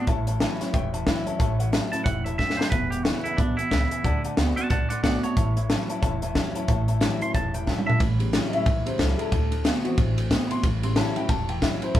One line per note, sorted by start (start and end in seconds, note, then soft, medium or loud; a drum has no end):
0.07 0.45 A1 medium
0.07 0.25 A2 medium
0.07 0.72 A2 medium
0.07 0.25 E3 medium
0.07 0.20 C#5 loud
0.07 0.20 E5 loud
0.07 0.20 A5 loud
0.07 kick loud
0.07 closed hi-hat medium
0.27 0.39 A2 medium
0.27 0.40 E3 medium
0.27 0.35 C#5 loud
0.27 0.36 E5 medium
0.27 0.36 A5 loud
0.27 closed hi-hat medium
0.40 0.58 A2 medium
0.40 0.60 E3 loud
0.40 0.59 F#3 medium
0.40 0.60 G3 medium
0.40 0.61 C#4 loud
0.40 0.60 E4 loud
0.40 0.53 C#5 medium
0.40 0.53 E5 medium
0.40 0.53 A5 loud
0.40 snare loud
0.40 closed hi-hat medium
0.60 0.72 A2 medium
0.60 0.73 F#3 medium
0.60 0.75 C#4 soft
0.60 0.74 E4 medium
0.60 0.69 C#5 medium
0.60 0.69 E5 medium
0.60 0.69 B5 loud
0.60 muted upright bass stroke medium
0.60 snare soft
0.60 closed hi-hat medium
0.73 1.11 E1 medium
0.73 1.38 E2 medium
0.73 0.91 A2 medium
0.73 0.92 E3 medium
0.73 0.85 C#5 loud
0.73 0.86 E5 loud
0.73 0.86 G5 loud
0.73 kick loud
0.73 closed hi-hat medium
0.93 1.05 A2 medium
0.93 1.06 E3 medium
0.93 1.01 C#5 medium
0.93 1.01 E5 medium
0.93 1.02 A5 loud
0.93 closed hi-hat medium
1.06 1.25 A2 medium
1.06 1.26 E3 medium
1.06 1.25 F#3 loud
1.06 1.26 G3 medium
1.06 1.27 C#4 medium
1.06 1.25 E4 loud
1.06 1.18 C#5 medium
1.06 1.19 E5 medium
1.06 1.19 G5 medium
1.06 kick medium
1.06 snare loud
1.06 closed hi-hat medium
1.26 1.38 A2 medium
1.26 1.39 F#3 medium
1.26 1.40 C#4 soft
1.26 1.39 E4 medium
1.26 1.34 C#5 medium
1.26 1.35 E5 medium
1.26 1.35 A5 loud
1.26 muted upright bass stroke medium
1.26 closed hi-hat medium
1.39 1.77 A1 medium
1.39 1.58 A2 medium
1.39 2.04 A2 medium
1.39 1.58 E3 medium
1.39 1.51 C#5 loud
1.39 1.51 E5 loud
1.39 1.52 A5 loud
1.39 kick loud
1.39 closed hi-hat loud
1.59 1.71 A2 medium
1.59 1.72 E3 medium
1.59 1.67 C#5 medium
1.59 1.67 E5 medium
1.59 1.68 F#5 loud
1.59 closed hi-hat medium
1.72 1.91 A2 medium
1.72 1.92 E3 loud
1.72 1.91 F#3 loud
1.72 1.92 G3 medium
1.72 1.93 C#4 medium
1.72 1.91 E4 loud
1.72 1.84 C#5 medium
1.72 1.85 E5 medium
1.72 1.85 A5 medium
1.72 snare loud
1.72 closed hi-hat medium
1.92 2.05 A2 medium
1.92 2.05 F#3 medium
1.92 2.06 C#4 medium
1.92 2.05 E4 medium
1.92 2.00 C#5 medium
1.92 2.00 E5 medium
1.92 2.04 A5 medium
1.92 2.01 A5 medium
1.92 muted upright bass stroke medium
1.92 closed hi-hat medium
2.04 2.43 E1 medium
2.04 2.38 G2 medium
2.04 2.24 A2 medium
2.04 2.24 E3 loud
2.04 2.17 C#5 medium
2.04 2.18 E5 medium
2.04 2.24 F#5 loud
2.04 2.18 G5 loud
2.04 kick loud
2.04 closed hi-hat medium
2.24 2.37 A2 medium
2.24 2.38 E3 loud
2.24 2.33 C#5 medium
2.24 2.37 E5 medium
2.24 2.34 E5 medium
2.24 2.34 A5 medium
2.24 closed hi-hat medium
2.38 2.71 F#2 medium
2.38 2.57 A2 medium
2.38 2.57 F#3 medium
2.38 2.51 C#5 medium
2.38 2.58 E5 medium
2.38 2.51 E5 medium
2.38 2.51 G5 medium
2.38 kick medium
2.38 snare medium
2.50 snare medium
2.57 2.71 A2 medium
2.57 2.71 F#3 medium
2.57 2.70 C5 medium
2.57 2.66 C#5 medium
2.57 2.67 E5 medium
2.57 2.67 A5 medium
2.57 muted upright bass stroke medium
2.57 snare loud
2.70 3.09 E1 medium
2.70 2.90 E2 medium
2.70 3.36 E2 loud
2.70 2.90 B2 medium
2.70 2.90 B4 loud
2.70 2.84 B4 loud
2.70 2.84 E5 medium
2.70 2.84 G#5 loud
2.70 kick loud
2.70 closed hi-hat medium
2.90 3.04 E2 medium
2.90 3.04 B2 medium
2.90 3.03 G4 medium
2.90 3.00 B4 medium
2.90 3.00 E5 medium
2.90 3.00 F#5 medium
2.90 closed hi-hat medium
3.03 3.23 E2 medium
3.03 3.23 C#3 medium
3.03 3.37 D3 loud
3.03 3.38 G#3 loud
3.03 3.23 F#4 loud
3.03 3.17 B4 medium
3.03 3.17 E5 medium
3.03 3.18 G#5 medium
3.03 snare loud
3.03 closed hi-hat medium
3.07 3.38 B3 loud
3.07 3.38 E4 loud
3.24 3.37 E2 medium
3.24 3.37 C#3 medium
3.24 3.37 E4 medium
3.24 3.33 B4 medium
3.24 3.33 E5 medium
3.24 3.34 G#5 medium
3.24 muted upright bass stroke medium
3.24 closed hi-hat medium
3.37 3.55 B1 medium
3.37 3.56 E2 medium
3.37 3.70 B2 loud
3.37 3.56 B2 medium
3.37 3.57 D4 loud
3.37 3.50 B4 medium
3.37 3.50 E5 medium
3.37 3.51 B5 loud
3.37 kick loud
3.37 closed hi-hat medium
3.57 3.70 E2 medium
3.57 3.70 B2 medium
3.57 4.22 E4 loud
3.57 3.66 B4 medium
3.57 3.66 E5 medium
3.57 3.67 G#5 medium
3.57 closed hi-hat medium
3.71 3.88 C#2 medium
3.71 3.89 E2 medium
3.71 3.89 C#3 loud
3.71 4.04 C#3 medium
3.71 3.83 B4 medium
3.71 3.83 E5 medium
3.71 3.84 G#5 medium
3.71 kick medium
3.71 snare loud
3.71 closed hi-hat medium
3.91 4.03 E2 medium
3.91 4.03 C#3 medium
3.91 3.99 B4 medium
3.91 3.99 E5 medium
3.91 3.99 G#5 medium
3.91 closed hi-hat medium
4.04 4.18 D2 medium
4.04 4.22 D3 medium
4.04 4.37 D3 medium
4.04 4.22 A3 medium
4.04 4.16 D5 loud
4.04 4.16 F#5 loud
4.04 4.17 A5 loud
4.04 kick loud
4.04 closed hi-hat medium
4.24 4.36 D3 medium
4.24 4.36 A3 medium
4.24 4.32 D5 medium
4.24 4.32 F#5 medium
4.24 4.33 A5 loud
4.24 muted upright bass stroke medium
4.24 closed hi-hat medium
4.37 4.54 D2 medium
4.37 4.55 D3 medium
4.37 4.57 D3 loud
4.37 4.57 A3 medium
4.37 4.56 B3 loud
4.37 4.58 C4 loud
4.37 4.57 F#4 loud
4.37 4.49 D5 medium
4.37 4.50 F#5 medium
4.37 4.50 B5 loud
4.37 snare loud
4.37 closed hi-hat medium
4.56 4.69 D3 medium
4.56 4.70 B3 medium
4.56 4.71 C4 medium
4.56 4.70 F#4 medium
4.56 4.65 D5 medium
4.56 4.69 F#5 medium
4.56 4.66 F#5 medium
4.56 4.69 A5 loud
4.56 4.66 C6 medium
4.56 closed hi-hat medium
4.70 4.87 C2 medium
4.70 5.35 A2 medium
4.70 4.88 D3 medium
4.70 4.89 A3 medium
4.70 4.82 D5 medium
4.70 4.89 F#5 medium
4.70 4.83 F#5 medium
4.70 4.90 A5 medium
4.70 4.83 A5 loud
4.70 kick loud
4.70 closed hi-hat medium
4.89 5.02 D3 medium
4.89 5.03 A3 medium
4.89 5.02 D5 medium
4.89 4.98 D5 medium
4.89 5.02 F#5 loud
4.89 4.99 F#5 medium
4.89 4.99 C6 medium
4.89 muted upright bass stroke medium
4.89 closed hi-hat medium
5.03 5.21 B1 medium
5.03 5.21 D3 medium
5.03 5.23 D3 medium
5.03 5.23 A3 medium
5.03 5.22 B3 loud
5.03 5.24 C4 medium
5.03 5.22 F#4 medium
5.03 5.22 D5 medium
5.03 5.15 D5 medium
5.03 5.23 F#5 medium
5.03 5.16 F#5 medium
5.03 5.16 A5 medium
5.03 kick medium
5.03 snare loud
5.03 closed hi-hat medium
5.23 5.35 D3 medium
5.23 5.35 B3 medium
5.23 5.37 C4 soft
5.23 5.36 F#4 medium
5.23 6.20 C#5 loud
5.23 5.31 D5 medium
5.23 5.32 F#5 medium
5.23 5.32 A5 medium
5.23 closed hi-hat medium
5.37 5.74 A1 medium
5.37 5.54 A2 medium
5.37 6.00 A2 medium
5.37 5.55 E3 loud
5.37 5.49 C#5 medium
5.37 5.49 E5 medium
5.37 5.49 A5 loud
5.37 kick loud
5.37 closed hi-hat medium
5.56 5.68 A2 medium
5.56 5.69 E3 medium
5.56 5.64 C#5 medium
5.56 5.64 E5 medium
5.56 5.65 B5 medium
5.56 closed hi-hat medium
5.69 5.88 A2 medium
5.69 5.89 E3 loud
5.69 5.88 F#3 loud
5.69 5.89 G3 loud
5.69 5.90 C#4 loud
5.69 5.89 E4 loud
5.69 5.81 C#5 medium
5.69 5.82 E5 medium
5.69 5.82 A5 loud
5.69 snare loud
5.69 closed hi-hat medium
5.89 6.01 A2 medium
5.89 6.02 F#3 medium
5.89 6.03 C#4 soft
5.89 6.02 E4 medium
5.89 5.97 C#5 loud
5.89 5.97 E5 medium
5.89 5.98 A5 loud
5.89 closed hi-hat medium
6.02 6.40 E1 medium
6.02 6.66 E2 medium
6.02 6.21 A2 medium
6.02 6.21 E3 loud
6.02 6.14 C#5 loud
6.02 6.14 E5 loud
6.02 6.14 A5 loud
6.02 kick loud
6.02 closed hi-hat medium
6.22 6.34 A2 medium
6.22 6.35 E3 loud
6.22 6.30 C#5 medium
6.22 6.30 E5 medium
6.22 6.31 A5 medium
6.22 closed hi-hat medium
6.35 6.53 A2 medium
6.35 6.55 E3 medium
6.35 6.53 F#3 medium
6.35 6.55 G3 medium
6.35 6.55 C#4 medium
6.35 6.53 E4 medium
6.35 6.47 C#5 medium
6.35 6.48 E5 medium
6.35 6.48 A5 medium
6.35 kick medium
6.35 snare loud
6.35 closed hi-hat medium
6.54 6.67 A2 medium
6.54 6.67 F#3 medium
6.54 6.69 C#4 medium
6.54 6.67 E4 medium
6.54 6.63 C#5 medium
6.54 6.63 E5 medium
6.54 6.64 A5 loud
6.54 muted upright bass stroke medium
6.54 closed hi-hat medium
6.68 7.05 A1 medium
6.68 6.86 A2 medium
6.68 7.32 A2 medium
6.68 6.86 E3 medium
6.68 6.80 C#5 loud
6.68 6.80 E5 medium
6.68 6.81 A5 loud
6.68 kick loud
6.68 closed hi-hat medium
6.88 7.00 A2 medium
6.88 7.00 E3 medium
6.88 6.96 C#5 medium
6.88 6.96 E5 medium
6.88 6.96 A5 loud
6.88 closed hi-hat medium
7.01 7.19 A2 medium
7.01 7.20 E3 loud
7.01 7.19 F#3 medium
7.01 7.21 G3 loud
7.01 7.21 C#4 medium
7.01 7.20 E4 loud
7.01 7.13 C#5 medium
7.01 7.13 E5 medium
7.01 7.14 A5 loud
7.01 snare loud
7.01 closed hi-hat medium
7.21 7.33 A2 medium
7.21 7.33 F#3 medium
7.21 7.35 C#4 soft
7.21 7.34 E4 medium
7.21 7.29 C#5 medium
7.21 7.29 E5 medium
7.21 7.29 A5 medium
7.21 7.34 C6 medium
7.21 muted upright bass stroke medium
7.21 closed hi-hat medium
7.34 7.71 E1 medium
7.34 7.98 E2 loud
7.34 7.52 A2 medium
7.34 7.53 E3 medium
7.34 7.46 C#5 medium
7.34 7.46 E5 medium
7.34 7.46 A5 loud
7.34 7.55 A5 medium
7.34 kick loud
7.34 closed hi-hat medium
7.53 7.66 A2 medium
7.53 7.66 E3 loud
7.53 7.62 C#5 medium
7.53 7.62 E5 medium
7.53 7.68 G5 medium
7.53 7.62 A5 medium
7.53 closed hi-hat medium
7.66 7.85 A2 medium
7.66 7.86 E3 medium
7.66 7.86 F#3 medium
7.66 7.87 G3 loud
7.66 7.87 C#4 medium
7.66 7.86 E4 loud
7.66 7.79 C#5 medium
7.66 7.79 E5 medium
7.66 7.85 E5 medium
7.66 7.79 A5 medium
7.66 kick medium
7.66 snare medium
7.78 mid tom medium
7.86 7.99 A2 medium
7.86 7.99 F#3 medium
7.86 8.01 C#4 soft
7.86 8.00 E4 medium
7.86 7.95 C#5 medium
7.86 8.00 E5 loud
7.86 7.95 E5 medium
7.86 7.95 A5 medium
7.86 muted upright bass stroke medium
7.86 floor tom medium
8.00 8.37 A1 medium
8.00 8.63 A2 medium
8.00 8.18 A2 medium
8.00 8.18 E3 loud
8.00 kick loud
8.00 ride medium
8.19 8.32 A2 medium
8.19 8.63 C#3 medium
8.19 8.32 E3 medium
8.19 8.64 G3 medium
8.19 8.64 B3 medium
8.19 ride medium
8.33 8.51 A2 medium
8.33 8.52 E3 medium
8.33 8.51 F#3 medium
8.33 8.52 G3 loud
8.33 8.53 C#4 loud
8.33 8.52 E4 loud
8.33 snare loud
8.33 ride medium
8.50 8.65 A2 medium
8.50 8.66 E4 medium
8.50 8.52 D#5 medium
8.50 muted upright bass stroke medium
8.50 ride medium
8.54 8.65 F#3 medium
8.54 8.67 C#4 medium
8.54 8.86 E5 loud
8.66 8.83 B1 medium
8.66 8.84 A2 medium
8.66 8.84 E3 loud
8.66 kick loud
8.66 ride medium
8.85 8.97 A2 medium
8.85 8.97 C#3 medium
8.85 8.98 E3 medium
8.85 8.98 G3 soft
8.85 8.98 B3 medium
8.85 8.99 C5 medium
8.85 ride medium
8.98 9.16 C#2 medium
8.98 9.17 A2 medium
8.98 9.30 E3 medium
8.98 9.17 F#3 loud
8.98 9.31 G3 loud
8.98 9.31 C#4 medium
8.98 9.31 E4 loud
8.98 9.19 A4 medium
8.98 kick medium
8.98 snare loud
8.98 ride medium
9.15 9.30 A2 medium
9.15 9.31 F#3 medium
9.15 9.17 G#4 medium
9.15 ride medium
9.20 10.15 A4 loud
9.32 9.69 D2 loud
9.32 9.50 D3 medium
9.32 9.63 D3 medium
9.32 9.50 A3 medium
9.32 kick loud
9.32 ride medium
9.51 9.63 D3 medium
9.51 9.64 A3 medium
9.51 ride medium
9.64 9.84 D3 medium
9.64 9.82 D3 medium
9.64 9.84 A3 loud
9.64 9.83 B3 medium
9.64 9.84 C4 loud
9.64 9.83 F#4 loud
9.64 snare loud
9.64 ride medium
9.84 9.96 D3 medium
9.84 10.59 E3 medium
9.84 10.59 F#3 medium
9.84 9.96 B3 medium
9.84 10.60 C4 medium
9.84 9.98 C4 medium
9.84 9.97 F#4 medium
9.84 muted upright bass stroke medium
9.84 ride medium
9.97 10.35 A1 medium
9.97 10.61 A2 medium
9.97 10.15 D3 medium
9.97 10.16 A3 medium
9.97 kick loud
9.97 ride medium
10.18 10.29 D3 medium
10.18 10.30 A3 loud
10.18 ride medium
10.30 10.49 D3 medium
10.30 10.48 D3 medium
10.30 10.50 A3 medium
10.30 10.49 B3 loud
10.30 10.50 C4 medium
10.30 10.50 F#4 medium
10.30 kick medium
10.30 snare loud
10.30 ride medium
10.47 10.62 D3 medium
10.47 10.62 B3 medium
10.47 10.49 B5 medium
10.47 muted upright bass stroke medium
10.47 ride medium
10.51 10.64 C4 soft
10.51 10.63 F#4 medium
10.51 10.64 C6 loud
10.63 11.00 A1 medium
10.63 10.81 A2 medium
10.63 11.27 A2 loud
10.63 10.81 E3 medium
10.63 kick loud
10.63 ride medium
10.82 10.95 A2 medium
10.82 11.26 C#3 medium
10.82 10.95 E3 medium
10.82 11.27 G3 medium
10.82 11.27 B3 medium
10.82 10.96 C6 medium
10.82 ride medium
10.96 11.14 A2 medium
10.96 11.15 E3 medium
10.96 11.14 F#3 medium
10.96 11.16 G3 loud
10.96 11.16 C#4 loud
10.96 11.15 E4 loud
10.96 11.16 A5 medium
10.96 snare loud
10.96 ride medium
11.16 11.28 A2 medium
11.16 11.28 F#3 medium
11.16 11.30 C#4 medium
11.16 11.29 E4 medium
11.16 11.29 G5 medium
11.16 ride medium
11.29 11.66 E1 medium
11.29 11.47 A2 medium
11.29 11.47 E3 medium
11.29 11.48 A5 medium
11.29 kick loud
11.29 ride medium
11.49 11.61 A2 medium
11.49 11.61 E3 loud
11.49 11.62 G5 medium
11.49 ride medium
11.62 11.80 A2 medium
11.62 11.81 E3 medium
11.62 11.80 F#3 loud
11.62 11.81 G3 medium
11.62 11.82 C#4 medium
11.62 11.80 E4 loud
11.62 11.82 E5 medium
11.62 kick medium
11.62 snare loud
11.62 ride medium
11.81 11.94 A2 medium
11.81 11.94 F#3 medium
11.81 11.95 C#4 soft
11.81 11.94 E4 medium
11.81 11.95 C5 loud
11.81 muted upright bass stroke medium
11.81 ride medium
11.94 12.00 A1 medium
11.94 12.00 A2 medium
11.94 12.00 C#3 medium
11.94 12.00 E3 medium
11.94 12.00 G3 medium
11.94 12.00 B3 medium
11.94 12.00 E4 medium
11.94 12.00 A4 loud
11.94 kick loud
11.94 ride medium